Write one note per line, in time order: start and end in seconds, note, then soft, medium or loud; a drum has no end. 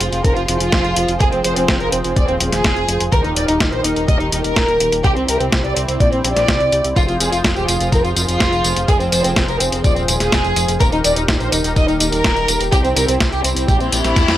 0.00 0.10 F1 medium
0.00 3.09 F3 medium
0.00 3.09 F4 medium
0.00 0.10 F4 medium
0.00 3.09 G#4 medium
0.00 3.09 C5 medium
0.00 closed hi-hat medium
0.13 0.22 F1 medium
0.13 0.22 F4 medium
0.13 closed hi-hat medium
0.25 0.34 F1 loud
0.25 0.33 A#4 medium
0.25 kick loud
0.25 closed hi-hat medium
0.37 0.46 F1 medium
0.37 0.46 F4 medium
0.37 closed hi-hat soft
0.48 0.58 F1 medium
0.48 0.58 F4 medium
0.48 closed hi-hat medium
0.60 0.70 F1 medium
0.60 1.11 F4 medium
0.60 closed hi-hat medium
0.72 0.82 F1 medium
0.72 kick loud
0.72 snare loud
0.72 closed hi-hat medium
0.84 0.94 F1 medium
0.84 closed hi-hat soft
0.96 1.06 F1 medium
0.96 closed hi-hat medium
1.08 1.18 F1 medium
1.08 closed hi-hat medium
1.20 1.30 F1 medium
1.20 1.29 G#4 medium
1.20 kick loud
1.20 closed hi-hat medium
1.32 1.42 F1 medium
1.32 1.42 C4 medium
1.32 closed hi-hat soft
1.44 1.54 F1 medium
1.44 1.53 C5 medium
1.44 closed hi-hat medium
1.56 1.66 F1 medium
1.56 1.66 C4 medium
1.56 closed hi-hat medium
1.68 1.78 F1 loud
1.68 1.78 C4 medium
1.68 kick loud
1.68 snare loud
1.68 closed hi-hat medium
1.80 1.90 F1 medium
1.80 1.88 A#4 medium
1.80 closed hi-hat soft
1.92 2.02 F1 loud
1.92 2.02 C4 medium
1.92 closed hi-hat medium
2.04 2.14 F1 medium
2.04 2.14 C4 medium
2.04 closed hi-hat soft
2.16 2.26 D#1 loud
2.16 2.25 D5 medium
2.16 kick loud
2.16 closed hi-hat medium
2.28 2.38 D#1 medium
2.28 2.38 C4 medium
2.28 closed hi-hat soft
2.40 2.50 D#1 medium
2.40 2.50 C4 medium
2.40 closed hi-hat medium
2.52 2.62 D#1 medium
2.52 3.03 G#4 medium
2.52 snare soft
2.52 closed hi-hat medium
2.64 2.74 F1 loud
2.64 kick loud
2.64 snare loud
2.64 closed hi-hat soft
2.77 2.86 F1 medium
2.77 closed hi-hat soft
2.88 2.98 F1 medium
2.88 closed hi-hat medium
3.00 3.10 F1 medium
3.00 closed hi-hat medium
3.12 3.22 D#1 loud
3.12 5.02 D#3 medium
3.12 5.03 D#4 medium
3.12 6.93 G4 medium
3.12 5.03 A#4 medium
3.12 3.20 A#4 loud
3.12 kick loud
3.12 closed hi-hat medium
3.24 3.34 D#1 medium
3.24 3.34 D#4 medium
3.24 closed hi-hat soft
3.36 3.46 D#1 medium
3.36 3.45 D5 medium
3.36 closed hi-hat medium
3.48 3.58 D#1 medium
3.48 3.58 D#4 medium
3.48 closed hi-hat soft
3.60 3.70 D#1 loud
3.60 3.70 D#4 medium
3.60 kick loud
3.60 snare loud
3.60 closed hi-hat medium
3.72 3.82 A#1 medium
3.72 3.81 C5 medium
3.72 closed hi-hat soft
3.84 3.94 D#1 loud
3.84 3.94 D#4 medium
3.84 closed hi-hat medium
3.96 4.06 D#1 medium
3.96 4.06 D#4 medium
3.96 closed hi-hat soft
4.08 4.18 D#1 loud
4.08 4.17 D#5 medium
4.08 kick loud
4.08 closed hi-hat soft
4.20 4.30 D#1 medium
4.20 4.30 D#4 medium
4.20 closed hi-hat soft
4.32 4.42 D#1 medium
4.32 4.42 D#4 medium
4.32 closed hi-hat medium
4.44 4.54 D#1 medium
4.44 4.95 A#4 medium
4.44 closed hi-hat soft
4.56 4.66 D#1 loud
4.56 kick loud
4.56 snare loud
4.56 closed hi-hat soft
4.68 4.78 D#1 medium
4.68 closed hi-hat soft
4.80 4.90 D#1 medium
4.80 closed hi-hat medium
4.92 5.02 D#1 medium
4.92 closed hi-hat medium
5.04 5.14 C2 loud
5.04 6.95 C4 medium
5.04 6.95 E4 medium
5.04 5.12 G4 loud
5.04 kick loud
5.04 closed hi-hat soft
5.16 5.26 C2 medium
5.16 5.26 C4 medium
5.16 closed hi-hat soft
5.28 5.38 C2 medium
5.28 5.36 A#4 medium
5.28 closed hi-hat medium
5.40 5.50 C2 medium
5.40 5.50 C4 medium
5.40 closed hi-hat soft
5.52 5.62 C2 loud
5.52 5.62 C4 medium
5.52 kick loud
5.52 snare loud
5.52 closed hi-hat soft
5.64 5.74 C2 medium
5.64 5.72 D5 medium
5.64 closed hi-hat soft
5.76 5.86 C2 medium
5.76 5.86 C4 medium
5.76 closed hi-hat medium
5.88 5.98 C2 medium
5.88 5.98 C4 medium
5.88 closed hi-hat soft
6.00 6.10 A#1 loud
6.00 6.08 D5 medium
6.00 kick loud
6.00 closed hi-hat soft
6.12 6.22 A#1 medium
6.12 6.22 C4 medium
6.12 closed hi-hat soft
6.24 6.34 A#1 medium
6.24 6.34 C4 medium
6.24 closed hi-hat medium
6.36 6.46 A#1 medium
6.36 6.87 D5 medium
6.36 snare soft
6.36 closed hi-hat soft
6.48 6.58 C2 medium
6.48 kick loud
6.48 snare loud
6.48 closed hi-hat soft
6.60 6.70 C2 medium
6.60 closed hi-hat soft
6.72 6.82 C2 medium
6.72 closed hi-hat medium
6.84 6.94 C2 medium
6.84 closed hi-hat soft
6.96 7.06 F1 loud
6.96 10.77 F3 medium
6.96 10.77 F4 medium
6.96 7.04 F4 loud
6.96 10.76 G#4 medium
6.96 10.77 C5 medium
6.96 kick loud
6.96 closed hi-hat soft
6.96 tambourine soft
7.08 7.18 F1 medium
7.08 7.18 F4 medium
7.08 closed hi-hat soft
7.08 tambourine soft
7.20 7.30 F1 medium
7.20 7.28 G#4 medium
7.20 closed hi-hat medium
7.20 tambourine medium
7.32 7.42 F1 medium
7.32 7.42 F4 medium
7.32 closed hi-hat soft
7.32 tambourine soft
7.44 7.54 F1 loud
7.44 7.54 F4 medium
7.44 kick loud
7.44 snare loud
7.44 closed hi-hat soft
7.44 tambourine soft
7.56 7.66 D#1 medium
7.56 7.64 G4 medium
7.56 closed hi-hat soft
7.56 tambourine soft
7.68 7.78 F1 medium
7.68 7.78 F4 medium
7.68 closed hi-hat medium
7.68 tambourine medium
7.80 7.90 F1 medium
7.80 7.90 F4 medium
7.80 closed hi-hat soft
7.80 tambourine soft
7.92 8.02 F1 loud
7.92 8.00 A#4 medium
7.92 kick loud
7.92 closed hi-hat soft
7.92 tambourine soft
8.04 8.14 F1 medium
8.04 8.14 F4 medium
8.04 closed hi-hat soft
8.04 tambourine soft
8.16 8.26 F1 medium
8.16 8.26 F4 medium
8.16 closed hi-hat medium
8.16 tambourine medium
8.28 8.38 F1 medium
8.28 8.79 F4 medium
8.28 closed hi-hat soft
8.28 tambourine soft
8.40 8.50 F1 medium
8.40 kick loud
8.40 snare loud
8.40 closed hi-hat soft
8.40 tambourine soft
8.52 8.62 F1 medium
8.52 closed hi-hat soft
8.52 tambourine soft
8.64 8.74 F1 medium
8.64 closed hi-hat medium
8.64 tambourine medium
8.76 8.86 F1 medium
8.76 closed hi-hat soft
8.76 tambourine soft
8.88 8.98 F1 loud
8.88 8.96 G#4 medium
8.88 kick loud
8.88 closed hi-hat medium
8.88 tambourine soft
9.00 9.10 F1 medium
9.00 9.10 C4 medium
9.00 closed hi-hat soft
9.00 tambourine soft
9.12 9.22 F1 medium
9.12 9.21 C5 medium
9.12 closed hi-hat medium
9.12 tambourine medium
9.24 9.34 F1 medium
9.24 9.34 C4 medium
9.24 closed hi-hat soft
9.24 tambourine soft
9.36 9.46 F1 loud
9.36 9.46 C4 medium
9.36 kick loud
9.36 snare loud
9.36 closed hi-hat medium
9.36 tambourine soft
9.48 9.58 F1 medium
9.48 9.56 A#4 medium
9.48 closed hi-hat soft
9.48 tambourine soft
9.60 9.70 F1 loud
9.60 9.70 C4 medium
9.60 closed hi-hat medium
9.60 tambourine medium
9.72 9.82 F1 medium
9.72 9.82 C4 medium
9.72 closed hi-hat soft
9.72 tambourine soft
9.84 9.94 D#1 loud
9.84 9.92 D5 medium
9.84 kick loud
9.84 closed hi-hat medium
9.84 tambourine soft
9.96 10.06 D#1 medium
9.96 10.06 C4 medium
9.96 closed hi-hat soft
9.96 tambourine soft
10.08 10.18 D#1 medium
10.08 10.18 C4 medium
10.08 closed hi-hat medium
10.08 tambourine medium
10.20 10.30 D#1 medium
10.20 10.71 G#4 medium
10.20 snare soft
10.20 closed hi-hat soft
10.20 tambourine soft
10.32 10.42 F1 loud
10.32 kick loud
10.32 snare loud
10.32 closed hi-hat soft
10.32 tambourine soft
10.44 10.54 F1 medium
10.44 closed hi-hat soft
10.44 tambourine soft
10.56 10.66 F1 loud
10.56 closed hi-hat medium
10.56 tambourine medium
10.68 10.78 F1 medium
10.68 closed hi-hat medium
10.68 tambourine soft
10.80 10.90 D#1 loud
10.80 12.70 D#3 medium
10.80 12.70 D#4 medium
10.80 14.38 G4 medium
10.80 10.88 A#4 loud
10.80 12.70 A#4 medium
10.80 kick loud
10.80 closed hi-hat medium
10.80 tambourine soft
10.92 11.02 D#1 medium
10.92 11.02 D#4 medium
10.92 closed hi-hat soft
10.92 tambourine soft
11.04 11.14 D#1 medium
11.04 11.12 D5 medium
11.04 closed hi-hat medium
11.04 tambourine medium
11.16 11.26 D#1 medium
11.16 11.26 D#4 medium
11.16 closed hi-hat medium
11.16 tambourine soft
11.28 11.38 D#1 loud
11.28 11.38 D#4 medium
11.28 kick loud
11.28 snare loud
11.28 closed hi-hat medium
11.28 tambourine soft
11.40 11.50 A#1 medium
11.40 11.48 C5 medium
11.40 closed hi-hat soft
11.40 tambourine soft
11.52 11.62 D#1 medium
11.52 11.62 D#4 medium
11.52 closed hi-hat medium
11.52 tambourine medium
11.64 11.74 D#1 medium
11.64 11.74 D#4 medium
11.64 closed hi-hat soft
11.64 tambourine soft
11.76 11.86 D#1 loud
11.76 11.85 D#5 medium
11.76 kick loud
11.76 closed hi-hat medium
11.76 tambourine soft
11.88 11.98 D#1 medium
11.88 11.98 D#4 medium
11.88 closed hi-hat soft
11.88 tambourine soft
12.00 12.10 D#1 medium
12.00 12.10 D#4 medium
12.00 closed hi-hat medium
12.00 tambourine medium
12.12 12.22 D#1 medium
12.12 12.63 A#4 loud
12.12 closed hi-hat soft
12.12 tambourine soft
12.24 12.34 D#1 medium
12.24 kick loud
12.24 snare loud
12.24 closed hi-hat medium
12.24 tambourine soft
12.36 12.46 D#1 medium
12.36 closed hi-hat soft
12.36 tambourine soft
12.48 12.58 D#1 medium
12.48 closed hi-hat medium
12.48 tambourine medium
12.60 12.70 D#1 medium
12.60 closed hi-hat medium
12.60 tambourine soft
12.72 12.82 C2 loud
12.72 14.38 C4 medium
12.72 14.38 E4 medium
12.72 12.80 G4 loud
12.72 kick loud
12.72 closed hi-hat medium
12.72 tambourine soft
12.84 12.94 C2 medium
12.84 12.94 C4 medium
12.84 closed hi-hat soft
12.84 tambourine soft
12.96 13.06 C2 medium
12.96 13.04 A#4 medium
12.96 closed hi-hat medium
12.96 tambourine medium
13.08 13.18 C2 medium
13.08 13.18 C4 medium
13.08 closed hi-hat medium
13.08 tambourine soft
13.20 13.30 C2 loud
13.20 13.30 C4 medium
13.20 kick loud
13.20 snare loud
13.20 closed hi-hat medium
13.20 tambourine soft
13.32 13.42 C2 medium
13.32 13.41 G4 medium
13.32 closed hi-hat soft
13.32 tambourine soft
13.44 13.54 C2 loud
13.44 13.54 C4 medium
13.44 closed hi-hat medium
13.44 tambourine medium
13.56 13.66 C2 medium
13.56 13.66 C4 medium
13.56 closed hi-hat medium
13.56 tambourine soft
13.68 13.78 A#1 loud
13.68 13.77 G4 medium
13.68 kick loud
13.68 closed hi-hat medium
13.68 tambourine soft
13.68 reverse cymbal medium
13.80 13.90 A#1 medium
13.80 13.90 C4 medium
13.80 closed hi-hat soft
13.80 tambourine soft
13.92 14.02 A#1 medium
13.92 14.02 C4 medium
13.92 closed hi-hat medium
13.92 tambourine medium
14.04 14.14 A#1 medium
14.04 14.38 E4 medium
14.04 snare soft
14.04 closed hi-hat medium
14.04 tambourine soft
14.16 14.26 E2 loud
14.16 kick loud
14.16 snare medium
14.16 closed hi-hat medium
14.16 tambourine soft
14.28 14.38 E2 medium
14.28 snare medium
14.28 closed hi-hat soft
14.28 tambourine soft